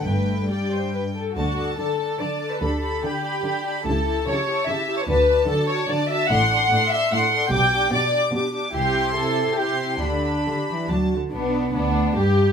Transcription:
<<
  \new Staff \with { instrumentName = "Violin section" } { \time 3/4 \key g \major \tempo 4 = 145 g''4 g''4. r8 | \key d \major a''8 a''8 a''8 a''8 a''8 a''8 | b''8 b''8 b''8 b''8 b''8 b''8 | a''8 a''8 a''8 a''8 a''8 a''8 |
a''8 a''8 a''8 a''8 a''8 a''8 | \key g \major c'''8 c'''8 c'''8 c'''8 c'''8 c'''8 | d'''8 d'''8 d'''8 d'''8 d'''8 d'''8 | c'''2 c'''4 |
b''2 a''8 r8 | b4 d'4 g'4 | }
  \new Staff \with { instrumentName = "Violin section" } { \time 3/4 \key g \major b'4 d''8 c''8 b'8 a'8 | \key d \major fis'4 a'4 d''8. b'16 | a'4 g'2 | a'4 cis''4 e''8. cis''16 |
b'4 a'8 cis''8 d''8 e''8 | \key g \major fis''4. e''8 fis''4 | g''4 d''8 r4. | g'4 a'4 g'4 |
d'2~ d'8 r8 | b4 d'4 g'4 | }
  \new Staff \with { instrumentName = "Viola section" } { \time 3/4 \key g \major a4 g4. r8 | \key d \major <d' a'>8 <d' a'>8 <d' a'>8 <d' a'>8 <d' a'>8 <d' a'>8 | <d' g'>8 <d' g'>8 <d' g'>8 <d' g'>8 <d' g'>8 <d' g'>8 | <e' g'>8 <e' g'>8 <e' g'>8 <e' g'>8 <e' g'>8 <e' g'>8 |
<d' fis'>8 <d' fis'>8 <d' fis'>8 <d' fis'>8 <d' fis'>8 <d' fis'>8 | \key g \major <d' a'>8 <d' a'>8 <d' a'>8 <d' a'>8 <d' a'>8 <d' a'>8 | <d' g'>8 <d' g'>8 <d' g'>8 <d' g'>8 <d' g'>8 <d' g'>8 | <e' g'>2 <e' g'>4 |
<d' g'>2 <d' fis'>8 r8 | b4 d'4 g'4 | }
  \new Staff \with { instrumentName = "Cello section" } { \clef bass \time 3/4 \key g \major g,2~ g,8 r8 | \key d \major d4 d4 d4 | d4 d4 d4 | cis4 cis4 cis4 |
d4 d4 d4 | \key g \major a,4 a,4 a,4 | b,4 b,4 b,4 | c2. |
d4 d8 e8 fis8 d8 | d'4 b4 g4 | }
  \new Staff \with { instrumentName = "Double bass section" } { \clef bass \time 3/4 \key g \major g,,4 r2 | \key d \major d,4 r2 | d,4 r2 | cis,4 r2 |
d,4 r2 | \key g \major a,,4 r2 | b,,4 r2 | c,4 r2 |
d,4 r4 d,8 r8 | b,,4 d,4 g,4 | }
>>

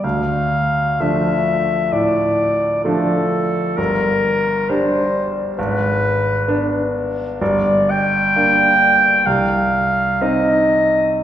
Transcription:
<<
  \new Staff \with { instrumentName = "Clarinet" } { \time 4/4 \key d \minor \tempo 4 = 65 f''4 e''4 d''4 a'4 | bes'4 c''8. r16 b'4. r8 | \key g \minor d''8 g''4. f''4 ees''4 | }
  \new Staff \with { instrumentName = "Grand piano" } { \time 4/4 \key d \minor d,4 <f a d'>4 a,4 <f a d'>4 | g,,4 <g d'>4 gis,,4 <b d'>4 | \key g \minor g,,4 <bes d'>4 c,4 <c' ees'>4 | }
>>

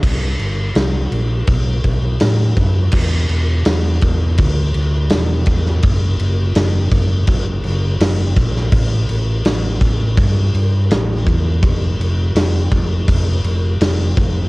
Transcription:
<<
  \new Staff \with { instrumentName = "Fingered electric bass" } { \clef bass \time 4/4 \key c \lydian \tempo 4 = 83 c,8 g,,8 c,8 ais,,8 b,,8 b,,8 a,8 fis,8 | \key a \mixolydian e,,8 e,,8 e,,8 e,,8 d,8 d,8 e,,8 e,,8 | fis,,8 fis,,8 fis,,8 fis,,8 fis,,8 fis,,8 fis,,8 ais,,8 | a,,8 a,,8 a,,8 a,,8 g,8 g,8 a,,8 e,8 |
f,,8 f,,8 f,,8 f,,8 f,,8 f,,8 f,,8 f,,8 | }
  \new DrumStaff \with { instrumentName = "Drums" } \drummode { \time 4/4 <cymc bd>8 cymc8 <cymc sn>8 cymc8 <cymc bd>8 <cymc bd>8 <cymc sn>8 <cymc bd>8 | <cymc bd>8 cymc8 <cymc sn>8 <cymc bd>8 <cymc bd>8 cymc8 <cymc sn>8 <cymc bd>16 sn16 | <cymc bd>8 cymc8 <cymc sn>8 <cymc bd>8 <cymc bd>8 cymc8 <cymc sn>8 <cymc bd>16 sn16 | <cymc bd>8 cymc8 <cymc sn>8 <cymc bd>8 <cymc bd>8 cymc8 <cymc sn>8 <cymc bd>8 |
<cymc bd>8 cymc8 <cymc sn>8 <cymc bd>8 <cymc bd>8 cymc8 <cymc sn>8 <cymc bd>8 | }
>>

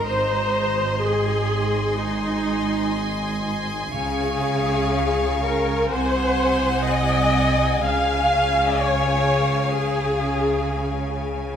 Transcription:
<<
  \new Staff \with { instrumentName = "Violin section" } { \time 4/4 \key aes \major \tempo 4 = 62 c'''1 | des'''2 aes''2~ | aes''1 | }
  \new Staff \with { instrumentName = "Violin section" } { \time 4/4 \key aes \major << { bes''4 aes''2.~ | aes''2 aes''2~ | aes''1 | } \\ { ees''1 | f''2 ges''2 | f''1 | } >> }
  \new Staff \with { instrumentName = "Viola section" } { \time 4/4 \key aes \major c''4 aes'4 ees'4. r8 | aes'4. bes'8 c''4 ees''4 | f''4 des''4 aes'4. r8 | }
  \new Staff \with { instrumentName = "Cello section" } { \clef bass \time 4/4 \key aes \major aes,1 | des2 c2 | des1 | }
  \new Staff \with { instrumentName = "Double bass section" } { \clef bass \time 4/4 \key aes \major aes,,1 | des,2 c,2 | des,1 | }
>>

